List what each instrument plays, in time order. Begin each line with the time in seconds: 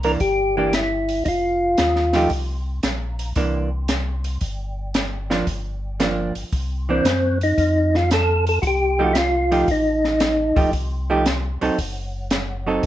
Already playing: tonewheel organ C2
0.03 hollow-body jazz guitar E3 A#3 D4, tonewheel organ A#4, open hi-hat
0.20 tonewheel organ G1 G4, kick, open hi-hat
0.57 hollow-body jazz guitar E3 A#3 D4, tonewheel organ G4
0.73 tonewheel organ E4, snare, closed hi-hat
1.09 open hi-hat
1.25 tonewheel organ F1 D#4 F4, kick, open hi-hat
1.78 tonewheel organ D#2, snare, closed hi-hat
1.96 snare
2.13 hollow-body jazz guitar F3 A3 D#4 G4, snare, open hi-hat
2.30 tonewheel organ C2, kick, open hi-hat
2.83 tonewheel organ A#1, snare, closed hi-hat
3.19 open hi-hat
3.36 tonewheel organ C2, hollow-body jazz guitar E3 A#3 D4, kick, open hi-hat
3.88 snare, closed hi-hat
4.24 open hi-hat
4.41 tonewheel organ G1, kick, open hi-hat
4.94 snare, closed hi-hat
5.30 hollow-body jazz guitar F3 A#3 D4, snare
5.47 tonewheel organ G1, kick, open hi-hat
6.00 hollow-body jazz guitar F3 A#3 D4, snare, closed hi-hat
6.35 tonewheel organ G1, open hi-hat
6.52 tonewheel organ C2, kick, open hi-hat
6.89 hollow-body jazz guitar E3 A#3 D4, tonewheel organ C4
7.04 tonewheel organ F#2, snare, closed hi-hat
7.41 tonewheel organ D#4, open hi-hat
7.58 tonewheel organ F2, kick, open hi-hat
7.95 tonewheel organ F4, snare
8.11 tonewheel organ A4, snare, closed hi-hat
8.47 tonewheel organ A4, open hi-hat
8.62 tonewheel organ C2 F#4, kick, open hi-hat
8.67 tonewheel organ G4
8.99 hollow-body jazz guitar F3 A3 D#4 G4, tonewheel organ F#4
9.13 tonewheel organ E4, snare, closed hi-hat
9.18 tonewheel organ F4
9.51 hollow-body jazz guitar F3 A3 D#4 G4, open hi-hat
9.68 tonewheel organ A1 D#4, kick, open hi-hat
10.04 snare
10.20 snare, closed hi-hat
10.56 tonewheel organ E1, hollow-body jazz guitar F3 A3 D#4 G4, kick, open hi-hat
10.73 tonewheel organ C2, kick, open hi-hat
11.10 hollow-body jazz guitar F3 A3 D#4 G4
11.26 snare, closed hi-hat
11.61 tonewheel organ C2, hollow-body jazz guitar F#3 C4 D#4 A4, open hi-hat
11.78 tonewheel organ F#1, kick, open hi-hat
12.31 snare, closed hi-hat
12.67 hollow-body jazz guitar F#3 C4 D#4 A4
12.83 open hi-hat